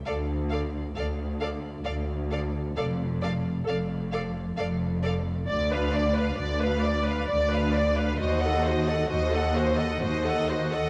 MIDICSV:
0, 0, Header, 1, 6, 480
1, 0, Start_track
1, 0, Tempo, 904977
1, 29, Time_signature, 3, 2, 24, 8
1, 4829, Tempo, 924499
1, 5759, End_track
2, 0, Start_track
2, 0, Title_t, "Violin section"
2, 0, Program_c, 0, 48
2, 31, Note_on_c, 0, 77, 49
2, 73, Note_off_c, 0, 77, 0
2, 268, Note_on_c, 0, 77, 53
2, 311, Note_off_c, 0, 77, 0
2, 509, Note_on_c, 0, 77, 54
2, 551, Note_off_c, 0, 77, 0
2, 743, Note_on_c, 0, 77, 54
2, 785, Note_off_c, 0, 77, 0
2, 981, Note_on_c, 0, 77, 53
2, 1024, Note_off_c, 0, 77, 0
2, 1226, Note_on_c, 0, 77, 45
2, 1269, Note_off_c, 0, 77, 0
2, 1465, Note_on_c, 0, 77, 50
2, 1507, Note_off_c, 0, 77, 0
2, 1718, Note_on_c, 0, 77, 60
2, 1760, Note_off_c, 0, 77, 0
2, 1950, Note_on_c, 0, 77, 57
2, 1992, Note_off_c, 0, 77, 0
2, 2188, Note_on_c, 0, 77, 54
2, 2230, Note_off_c, 0, 77, 0
2, 2426, Note_on_c, 0, 77, 60
2, 2469, Note_off_c, 0, 77, 0
2, 2678, Note_on_c, 0, 77, 50
2, 2721, Note_off_c, 0, 77, 0
2, 2914, Note_on_c, 0, 74, 62
2, 3027, Note_off_c, 0, 74, 0
2, 3041, Note_on_c, 0, 77, 52
2, 3157, Note_on_c, 0, 74, 57
2, 3158, Note_off_c, 0, 77, 0
2, 3275, Note_off_c, 0, 74, 0
2, 3278, Note_on_c, 0, 77, 54
2, 3388, Note_on_c, 0, 74, 63
2, 3394, Note_off_c, 0, 77, 0
2, 3500, Note_off_c, 0, 74, 0
2, 3512, Note_on_c, 0, 77, 57
2, 3632, Note_off_c, 0, 77, 0
2, 3634, Note_on_c, 0, 74, 58
2, 3753, Note_off_c, 0, 74, 0
2, 3756, Note_on_c, 0, 77, 53
2, 3869, Note_on_c, 0, 74, 70
2, 3875, Note_off_c, 0, 77, 0
2, 3982, Note_off_c, 0, 74, 0
2, 3997, Note_on_c, 0, 77, 58
2, 4114, Note_off_c, 0, 77, 0
2, 4117, Note_on_c, 0, 74, 58
2, 4228, Note_on_c, 0, 77, 55
2, 4233, Note_off_c, 0, 74, 0
2, 4343, Note_on_c, 0, 75, 64
2, 4347, Note_off_c, 0, 77, 0
2, 4456, Note_off_c, 0, 75, 0
2, 4465, Note_on_c, 0, 78, 56
2, 4583, Note_on_c, 0, 75, 62
2, 4585, Note_off_c, 0, 78, 0
2, 4702, Note_on_c, 0, 78, 59
2, 4705, Note_off_c, 0, 75, 0
2, 4827, Note_off_c, 0, 78, 0
2, 4831, Note_on_c, 0, 75, 67
2, 4941, Note_off_c, 0, 75, 0
2, 4949, Note_on_c, 0, 78, 65
2, 5069, Note_off_c, 0, 78, 0
2, 5069, Note_on_c, 0, 75, 61
2, 5189, Note_off_c, 0, 75, 0
2, 5189, Note_on_c, 0, 78, 58
2, 5309, Note_off_c, 0, 78, 0
2, 5311, Note_on_c, 0, 75, 67
2, 5422, Note_off_c, 0, 75, 0
2, 5431, Note_on_c, 0, 78, 63
2, 5544, Note_on_c, 0, 75, 57
2, 5550, Note_off_c, 0, 78, 0
2, 5667, Note_off_c, 0, 75, 0
2, 5667, Note_on_c, 0, 78, 58
2, 5759, Note_off_c, 0, 78, 0
2, 5759, End_track
3, 0, Start_track
3, 0, Title_t, "Violin section"
3, 0, Program_c, 1, 48
3, 38, Note_on_c, 1, 74, 52
3, 80, Note_off_c, 1, 74, 0
3, 277, Note_on_c, 1, 74, 48
3, 320, Note_off_c, 1, 74, 0
3, 517, Note_on_c, 1, 74, 47
3, 560, Note_off_c, 1, 74, 0
3, 753, Note_on_c, 1, 74, 55
3, 795, Note_off_c, 1, 74, 0
3, 982, Note_on_c, 1, 74, 49
3, 1024, Note_off_c, 1, 74, 0
3, 1229, Note_on_c, 1, 74, 48
3, 1271, Note_off_c, 1, 74, 0
3, 1474, Note_on_c, 1, 74, 56
3, 1516, Note_off_c, 1, 74, 0
3, 1705, Note_on_c, 1, 74, 52
3, 1747, Note_off_c, 1, 74, 0
3, 1947, Note_on_c, 1, 74, 52
3, 1990, Note_off_c, 1, 74, 0
3, 2190, Note_on_c, 1, 74, 61
3, 2233, Note_off_c, 1, 74, 0
3, 2434, Note_on_c, 1, 74, 55
3, 2477, Note_off_c, 1, 74, 0
3, 2673, Note_on_c, 1, 74, 56
3, 2716, Note_off_c, 1, 74, 0
3, 2909, Note_on_c, 1, 74, 64
3, 3024, Note_on_c, 1, 71, 60
3, 3025, Note_off_c, 1, 74, 0
3, 3143, Note_on_c, 1, 74, 63
3, 3149, Note_off_c, 1, 71, 0
3, 3261, Note_on_c, 1, 71, 56
3, 3267, Note_off_c, 1, 74, 0
3, 3381, Note_on_c, 1, 74, 58
3, 3386, Note_off_c, 1, 71, 0
3, 3497, Note_off_c, 1, 74, 0
3, 3499, Note_on_c, 1, 71, 55
3, 3625, Note_off_c, 1, 71, 0
3, 3626, Note_on_c, 1, 74, 65
3, 3744, Note_on_c, 1, 71, 57
3, 3749, Note_off_c, 1, 74, 0
3, 3866, Note_on_c, 1, 74, 62
3, 3869, Note_off_c, 1, 71, 0
3, 3981, Note_off_c, 1, 74, 0
3, 3991, Note_on_c, 1, 71, 61
3, 4109, Note_on_c, 1, 74, 63
3, 4111, Note_off_c, 1, 71, 0
3, 4229, Note_off_c, 1, 74, 0
3, 4230, Note_on_c, 1, 71, 56
3, 4347, Note_on_c, 1, 72, 59
3, 4348, Note_off_c, 1, 71, 0
3, 4458, Note_off_c, 1, 72, 0
3, 4467, Note_on_c, 1, 75, 66
3, 4579, Note_on_c, 1, 72, 65
3, 4587, Note_off_c, 1, 75, 0
3, 4703, Note_off_c, 1, 72, 0
3, 4703, Note_on_c, 1, 75, 58
3, 4821, Note_on_c, 1, 72, 63
3, 4827, Note_off_c, 1, 75, 0
3, 4936, Note_off_c, 1, 72, 0
3, 4948, Note_on_c, 1, 75, 57
3, 5064, Note_on_c, 1, 72, 69
3, 5069, Note_off_c, 1, 75, 0
3, 5187, Note_off_c, 1, 72, 0
3, 5187, Note_on_c, 1, 75, 60
3, 5303, Note_on_c, 1, 72, 61
3, 5308, Note_off_c, 1, 75, 0
3, 5418, Note_off_c, 1, 72, 0
3, 5427, Note_on_c, 1, 75, 67
3, 5546, Note_on_c, 1, 72, 56
3, 5548, Note_off_c, 1, 75, 0
3, 5668, Note_off_c, 1, 72, 0
3, 5671, Note_on_c, 1, 75, 65
3, 5759, Note_off_c, 1, 75, 0
3, 5759, End_track
4, 0, Start_track
4, 0, Title_t, "Viola section"
4, 0, Program_c, 2, 48
4, 35, Note_on_c, 2, 69, 56
4, 78, Note_off_c, 2, 69, 0
4, 271, Note_on_c, 2, 69, 44
4, 314, Note_off_c, 2, 69, 0
4, 506, Note_on_c, 2, 69, 54
4, 549, Note_off_c, 2, 69, 0
4, 744, Note_on_c, 2, 69, 52
4, 786, Note_off_c, 2, 69, 0
4, 976, Note_on_c, 2, 69, 47
4, 1018, Note_off_c, 2, 69, 0
4, 1220, Note_on_c, 2, 69, 47
4, 1262, Note_off_c, 2, 69, 0
4, 1472, Note_on_c, 2, 69, 62
4, 1514, Note_off_c, 2, 69, 0
4, 1714, Note_on_c, 2, 69, 52
4, 1756, Note_off_c, 2, 69, 0
4, 1940, Note_on_c, 2, 69, 52
4, 1983, Note_off_c, 2, 69, 0
4, 2184, Note_on_c, 2, 69, 53
4, 2227, Note_off_c, 2, 69, 0
4, 2426, Note_on_c, 2, 69, 51
4, 2468, Note_off_c, 2, 69, 0
4, 2672, Note_on_c, 2, 69, 54
4, 2714, Note_off_c, 2, 69, 0
4, 2910, Note_on_c, 2, 74, 66
4, 3025, Note_off_c, 2, 74, 0
4, 3031, Note_on_c, 2, 71, 58
4, 3146, Note_on_c, 2, 74, 55
4, 3153, Note_off_c, 2, 71, 0
4, 3263, Note_on_c, 2, 71, 56
4, 3269, Note_off_c, 2, 74, 0
4, 3383, Note_on_c, 2, 74, 60
4, 3387, Note_off_c, 2, 71, 0
4, 3498, Note_off_c, 2, 74, 0
4, 3498, Note_on_c, 2, 71, 57
4, 3612, Note_on_c, 2, 74, 59
4, 3625, Note_off_c, 2, 71, 0
4, 3734, Note_on_c, 2, 71, 56
4, 3742, Note_off_c, 2, 74, 0
4, 3859, Note_on_c, 2, 74, 54
4, 3864, Note_off_c, 2, 71, 0
4, 3976, Note_on_c, 2, 71, 61
4, 3977, Note_off_c, 2, 74, 0
4, 4104, Note_off_c, 2, 71, 0
4, 4106, Note_on_c, 2, 74, 59
4, 4223, Note_on_c, 2, 71, 58
4, 4227, Note_off_c, 2, 74, 0
4, 4345, Note_off_c, 2, 71, 0
4, 4347, Note_on_c, 2, 66, 70
4, 4458, Note_off_c, 2, 66, 0
4, 4473, Note_on_c, 2, 69, 62
4, 4590, Note_off_c, 2, 69, 0
4, 4596, Note_on_c, 2, 66, 60
4, 4708, Note_on_c, 2, 69, 58
4, 4712, Note_off_c, 2, 66, 0
4, 4829, Note_on_c, 2, 66, 60
4, 4830, Note_off_c, 2, 69, 0
4, 4941, Note_off_c, 2, 66, 0
4, 4942, Note_on_c, 2, 69, 60
4, 5065, Note_off_c, 2, 69, 0
4, 5066, Note_on_c, 2, 66, 64
4, 5187, Note_off_c, 2, 66, 0
4, 5188, Note_on_c, 2, 69, 58
4, 5309, Note_off_c, 2, 69, 0
4, 5310, Note_on_c, 2, 66, 58
4, 5421, Note_off_c, 2, 66, 0
4, 5427, Note_on_c, 2, 69, 66
4, 5548, Note_off_c, 2, 69, 0
4, 5554, Note_on_c, 2, 66, 59
4, 5670, Note_on_c, 2, 69, 57
4, 5672, Note_off_c, 2, 66, 0
4, 5759, Note_off_c, 2, 69, 0
4, 5759, End_track
5, 0, Start_track
5, 0, Title_t, "Cello section"
5, 0, Program_c, 3, 48
5, 26, Note_on_c, 3, 38, 69
5, 451, Note_off_c, 3, 38, 0
5, 506, Note_on_c, 3, 38, 63
5, 927, Note_off_c, 3, 38, 0
5, 982, Note_on_c, 3, 38, 66
5, 1415, Note_off_c, 3, 38, 0
5, 1470, Note_on_c, 3, 41, 73
5, 1897, Note_off_c, 3, 41, 0
5, 1943, Note_on_c, 3, 41, 66
5, 2371, Note_off_c, 3, 41, 0
5, 2429, Note_on_c, 3, 41, 68
5, 2859, Note_off_c, 3, 41, 0
5, 2915, Note_on_c, 3, 38, 84
5, 3334, Note_off_c, 3, 38, 0
5, 3384, Note_on_c, 3, 38, 70
5, 3812, Note_off_c, 3, 38, 0
5, 3869, Note_on_c, 3, 38, 75
5, 4291, Note_off_c, 3, 38, 0
5, 4345, Note_on_c, 3, 39, 83
5, 4770, Note_off_c, 3, 39, 0
5, 4821, Note_on_c, 3, 39, 84
5, 5248, Note_off_c, 3, 39, 0
5, 5301, Note_on_c, 3, 39, 75
5, 5729, Note_off_c, 3, 39, 0
5, 5759, End_track
6, 0, Start_track
6, 0, Title_t, "Double bass section"
6, 0, Program_c, 4, 48
6, 34, Note_on_c, 4, 38, 72
6, 455, Note_off_c, 4, 38, 0
6, 507, Note_on_c, 4, 38, 58
6, 927, Note_off_c, 4, 38, 0
6, 985, Note_on_c, 4, 38, 61
6, 1417, Note_off_c, 4, 38, 0
6, 1469, Note_on_c, 4, 29, 74
6, 1896, Note_off_c, 4, 29, 0
6, 1952, Note_on_c, 4, 29, 66
6, 2376, Note_off_c, 4, 29, 0
6, 2432, Note_on_c, 4, 29, 69
6, 2861, Note_off_c, 4, 29, 0
6, 2912, Note_on_c, 4, 38, 73
6, 3333, Note_off_c, 4, 38, 0
6, 3387, Note_on_c, 4, 38, 78
6, 3813, Note_off_c, 4, 38, 0
6, 3867, Note_on_c, 4, 38, 76
6, 4290, Note_off_c, 4, 38, 0
6, 4344, Note_on_c, 4, 39, 84
6, 4769, Note_off_c, 4, 39, 0
6, 4822, Note_on_c, 4, 39, 87
6, 5249, Note_off_c, 4, 39, 0
6, 5305, Note_on_c, 4, 39, 76
6, 5731, Note_off_c, 4, 39, 0
6, 5759, End_track
0, 0, End_of_file